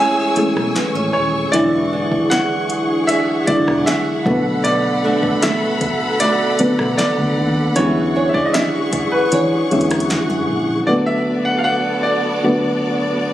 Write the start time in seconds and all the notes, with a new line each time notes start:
Already playing: A2 E3 G#3 A3 C#4 G#4 G#5 C#6 E6
0.00 C#4 E4
0.36 E3 G#3 A3 C#4 G#4, muted fingered electric bass stroke, closed hi-hat
0.56 B1, cross-stick
0.76 B3, snare, closed hi-hat
0.95 A1 C#4
1.13 D#1 C#5
1.52 E1 D3 E3 F#3 G#3 D4 E4 G#4 D5 F#5, closed hi-hat
1.93 D4 G#4
2.12 kick
2.30 D4 F#5, snare, closed hi-hat
2.70 closed hi-hat
3.07 D4 G#4 E5, closed hi-hat
3.47 D3 F#3 G#3 D4 E4 D5, muted fingered electric bass stroke, kick, closed hi-hat
3.68 E1, cross-stick
3.86 G#4 E5, snare, closed hi-hat
4.26 B1 B2 D3 F#3 A3 B3 F#4 A4 B5, kick
4.64 B2 D5, closed hi-hat
5.04 A3 D4 F#4
5.23 kick
5.42 A3 E5, snare, closed hi-hat
5.81 kick, closed hi-hat
6.20 A3 D4 F#4 D5, closed hi-hat
6.59 D3 F#3 A3 B3 D4, muted fingered electric bass stroke, closed hi-hat
6.79 B1, cross-stick
6.98 D4 D5, snare, closed hi-hat
7.19 D2
7.38 D#2
7.76 E2 D3 E3 F#3 G3 C#4 E4 G#4 C#5 C#6, closed hi-hat
7.83 G#3
8.15 D4 G#4 C#5
8.29 E5
8.34 D5, kick
8.46 D#5
8.53 D4 E5, snare, closed hi-hat
8.93 kick, closed hi-hat
9.12 B4
9.32 E3 D4 G#4 C#5, closed hi-hat
9.71 E2 D3 F#3 G#3 C#4 E4, closed hi-hat
9.81 closed hi-hat
9.91 cross-stick, closed hi-hat
10.00 closed hi-hat
10.10 F#4, snare, closed hi-hat
10.30 F#2 G#4
10.49 A#1
10.87 D3 F#3 A3 B3 F#4 A4 D5
11.06 E5
11.45 F#5
11.58 F5
11.64 F#5
12.03 D5
12.44 D3 F#3 A3 B3 F#4